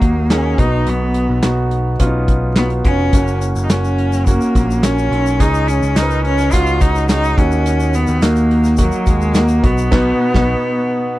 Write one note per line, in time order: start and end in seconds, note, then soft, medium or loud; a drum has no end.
0.00 0.54 D#2 medium
0.00 0.60 D#3 medium
0.00 0.30 A#3 medium
0.00 0.32 A#3 medium
0.00 0.30 D#4 medium
0.00 0.59 F#4 medium
0.00 kick medium
0.00 closed hi-hat medium
0.30 0.58 A#3 medium
0.30 0.61 C#4 medium
0.30 0.57 D#4 medium
0.30 0.59 G#4 medium
0.30 snare medium
0.30 clap medium
0.30 closed hi-hat medium
0.58 0.85 B1 medium
0.58 1.40 B2 medium
0.58 1.31 B3 medium
0.58 1.32 D#4 medium
0.58 0.91 D#4 medium
0.58 1.32 F#4 medium
0.58 kick loud
0.58 closed hi-hat medium
0.87 1.26 B1 loud
0.87 1.45 B3 medium
0.87 closed hi-hat medium
1.14 closed hi-hat medium
1.29 1.42 B1 medium
1.43 1.96 B1 medium
1.43 1.92 B3 medium
1.43 1.92 D#4 medium
1.43 1.92 F#4 medium
1.43 snare medium
1.43 clap medium
1.43 closed hi-hat medium
1.71 closed hi-hat medium
2.00 2.81 B1 medium
2.00 2.48 B3 medium
2.00 2.06 C#4 medium
2.00 2.49 F4 medium
2.00 kick medium
2.00 closed hi-hat medium
2.06 2.52 D#4 medium
2.28 kick medium
2.28 closed hi-hat medium
2.56 2.69 B3 medium
2.56 3.06 B3 medium
2.56 3.06 D#4 medium
2.56 3.06 F#4 medium
2.56 snare medium
2.56 clap medium
2.56 closed hi-hat medium
2.70 closed hi-hat soft
2.84 3.11 F1 medium
2.84 3.37 C#4 medium
2.84 kick medium
2.84 closed hi-hat medium
3.13 3.52 F#1 medium
3.13 3.62 A#3 medium
3.13 3.62 C#4 medium
3.13 3.62 F#4 medium
3.13 kick loud
3.13 closed hi-hat medium
3.13 shaker medium
3.27 shaker soft
3.41 closed hi-hat medium
3.41 shaker medium
3.56 3.69 F#1 medium
3.56 shaker soft
3.64 3.71 D#4 medium
3.70 4.37 F#1 medium
3.70 4.19 A#3 medium
3.70 4.27 C#4 medium
3.70 4.19 C#4 medium
3.70 4.19 F#4 medium
3.70 snare loud
3.70 clap medium
3.70 closed hi-hat medium
3.70 shaker medium
3.85 shaker soft
3.98 closed hi-hat medium
4.13 snare soft
4.13 shaker soft
4.26 4.85 A#3 medium
4.26 4.76 A#3 medium
4.26 4.76 C#4 medium
4.26 4.76 F#4 medium
4.26 kick medium
4.26 closed hi-hat medium
4.26 shaker medium
4.41 shaker soft
4.55 5.08 A#1 medium
4.55 kick medium
4.55 closed hi-hat medium
4.55 shaker soft
4.71 shaker soft
4.83 5.32 A#3 medium
4.83 5.41 C#4 medium
4.83 5.32 C#4 medium
4.83 5.32 F#4 medium
4.83 snare loud
4.83 clap medium
4.83 closed hi-hat medium
4.83 shaker medium
4.98 shaker soft
5.11 5.40 B1 medium
5.11 closed hi-hat medium
5.26 shaker medium
5.40 5.79 C#2 loud
5.40 6.21 C#3 medium
5.40 5.89 C#4 medium
5.40 5.69 D#4 medium
5.40 5.89 D#4 medium
5.40 5.89 G#4 medium
5.40 kick medium
5.40 closed hi-hat medium
5.40 shaker medium
5.54 shaker soft
5.68 5.98 C#4 medium
5.68 closed hi-hat medium
5.68 shaker medium
5.82 5.95 C#2 medium
5.82 shaker soft
5.95 6.49 C#2 medium
5.95 6.45 C#4 medium
5.95 6.45 D#4 medium
5.95 6.24 D#4 medium
5.95 6.03 A#4 medium
5.95 snare medium
5.95 clap medium
5.95 closed hi-hat medium
5.95 shaker medium
6.03 6.48 B4 medium
6.11 shaker soft
6.25 6.54 C#4 loud
6.25 closed hi-hat soft
6.38 snare soft
6.38 shaker soft
6.51 7.34 C#2 medium
6.51 7.02 C#4 medium
6.51 7.02 D#4 medium
6.51 6.83 F4 medium
6.51 7.02 F#4 medium
6.51 kick medium
6.51 closed hi-hat medium
6.51 shaker medium
6.66 shaker soft
6.81 7.09 D#4 medium
6.81 kick medium
6.81 closed hi-hat medium
6.81 shaker soft
6.95 shaker soft
7.09 7.38 C#4 medium
7.09 7.40 D#4 loud
7.09 7.37 D#4 medium
7.09 7.38 G#4 medium
7.09 snare medium
7.09 clap medium
7.09 closed hi-hat medium
7.09 shaker medium
7.24 shaker soft
7.38 8.05 D#2 loud
7.38 8.19 D#3 soft
7.38 8.11 A#3 medium
7.38 7.97 C#4 medium
7.38 8.11 D#4 medium
7.38 8.11 F#4 medium
7.38 kick loud
7.38 closed hi-hat medium
7.51 shaker medium
7.66 closed hi-hat medium
7.66 shaker medium
7.80 shaker soft
7.94 8.24 B3 medium
7.94 closed hi-hat medium
7.94 shaker soft
8.07 8.21 D#2 medium
8.07 shaker medium
8.22 8.90 D#2 medium
8.22 8.71 A#3 medium
8.22 8.79 A#3 medium
8.22 8.71 D#4 medium
8.22 8.71 F#4 medium
8.22 snare medium
8.22 clap medium
8.22 closed hi-hat medium
8.22 shaker medium
8.36 closed hi-hat soft
8.36 shaker soft
8.51 closed hi-hat medium
8.64 snare soft
8.64 shaker soft
8.77 9.11 F#3 medium
8.77 9.27 A#3 medium
8.77 9.27 D#4 medium
8.77 9.28 F#4 medium
8.77 kick medium
8.77 closed hi-hat medium
8.77 shaker medium
8.92 shaker soft
9.06 9.60 D#2 medium
9.06 9.39 G#3 medium
9.06 kick medium
9.06 closed hi-hat medium
9.06 shaker soft
9.21 shaker soft
9.34 9.64 A#3 medium
9.34 9.67 A#3 loud
9.34 9.62 D#4 medium
9.34 9.62 F#4 medium
9.34 snare medium
9.34 clap medium
9.34 closed hi-hat medium
9.34 shaker medium
9.48 closed hi-hat soft
9.48 shaker soft
9.63 9.90 B1 medium
9.63 9.90 B2 medium
9.63 9.90 B3 medium
9.63 11.19 B3 medium
9.63 9.90 D#4 medium
9.63 9.90 F#4 medium
9.63 kick loud
9.63 closed hi-hat medium
9.78 shaker medium
9.91 10.11 B1 loud
9.91 10.11 B2 medium
9.91 10.11 B3 loud
9.91 10.11 D#4 medium
9.91 10.11 F#4 medium
9.91 kick medium
9.91 snare medium
9.91 crash medium
10.34 10.54 B1 medium
10.34 10.54 B3 medium
10.34 10.54 D#4 medium
10.34 10.54 F#4 medium
10.34 kick medium
10.34 snare medium